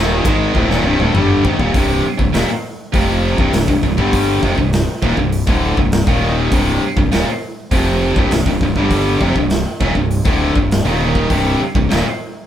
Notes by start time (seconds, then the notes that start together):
Already playing: D#1 D#2 A#2 D#3
0.25 G#1 G#2 D#3 G#3, kick, ride
0.54 D1 D2 A2, kick
0.69 D#1 D#2 A#2, snare
0.84 C1 C2 G2
0.99 D1 D2 A2, mid tom
1.14 G1 G2 D3 G3, mid tom
1.44 G#1 G#2 D#3, kick
1.59 D#1 D#2 A#2, kick
1.73 C1 C2 G2 C3, kick, open hi-hat
2.04 muted distorted electric guitar stroke, muted fingered electric bass stroke
2.19 C1 C2 G2, kick
2.34 D#1 D#2 A#2, snare, open hi-hat
2.48 muted fingered electric bass stroke, muted distorted electric guitar stroke
2.93 F1 F2 C3 F3, kick, open hi-hat
3.38 C1 C2 G2, kick
3.53 C1 C2 G2, snare, open hi-hat
3.68 C1 C2 G2, kick
3.83 C1 C2 G2, kick
3.97 G1 G2 D3 G3, kick
4.13 kick, open hi-hat
4.42 F1 F2 C3, kick
4.57 C1 C2 G2, kick
4.73 snare, open hi-hat
5.02 D#1 D#2 A#2, kick
5.17 C1 C2 G2, kick
5.32 open hi-hat
5.47 D1 D2 A2 D3, kick
5.77 C1 C2 G2, kick
5.92 snare, open hi-hat
6.07 D#1 D#2 A#2 D#3, kick
6.51 C1 C2 G2 C3, kick, open hi-hat
6.82 muted distorted electric guitar stroke, muted fingered electric bass stroke
6.96 C1 C2 G2, kick
7.11 D#1 D#2 A#2, snare, open hi-hat
7.28 muted distorted electric guitar stroke, muted fingered electric bass stroke
7.71 F1 F2 C3 F3, kick, open hi-hat
8.16 C1 C2 G2, kick
8.30 C1 C2 G2, snare, open hi-hat
8.46 C1 C2 G2, kick
8.61 C1 C2 G2, kick
8.76 G1 G2 D3 G3, kick
8.91 kick, open hi-hat
9.21 F1 F2 C3, kick
9.36 C1 C2 G2, kick
9.50 snare, open hi-hat
9.80 D#1 D#2 A#2, kick
9.95 C1 C2 G2, kick
10.11 open hi-hat
10.25 D1 D2 A2 D3, kick
10.55 C1 C2 G2, kick
10.71 snare, open hi-hat
10.85 D#1 D#2 A#2 D#3
11.01 high tom
11.15 kick
11.29 C1 C2 G2 C3, kick, open hi-hat
11.60 muted distorted electric guitar stroke, muted fingered electric bass stroke
11.75 C1 C2 G2, kick
11.89 D#1 D#2 A#2, snare, open hi-hat
12.05 muted distorted electric guitar stroke, muted fingered electric bass stroke